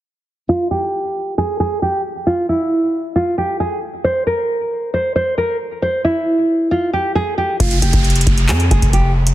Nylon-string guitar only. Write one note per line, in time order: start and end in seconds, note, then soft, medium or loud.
0.49 0.67 F4 medium
0.71 1.34 G4 medium
1.38 1.56 G#4 medium
1.60 1.78 G#4 medium
1.82 2.01 G4 medium
2.27 2.45 F4 medium
2.49 3.12 E4 medium
3.16 3.34 F4 medium
3.38 3.56 G4 medium
3.60 3.78 G#4 medium
4.04 4.23 C5 medium
4.27 4.89 A#4 medium
4.94 5.12 C5 medium
5.16 5.34 C5 medium
5.38 5.56 A#4 medium
5.82 6.01 C5 medium
6.05 6.67 E4 medium
6.71 6.90 F4 medium
6.93 7.12 G4 medium
7.15 7.34 G#4 medium
7.38 7.56 G4 medium
7.60 7.78 F4 medium
7.82 8.45 G4 medium
8.49 8.67 G#4 medium
8.71 8.89 G#4 medium
8.93 9.12 G4 medium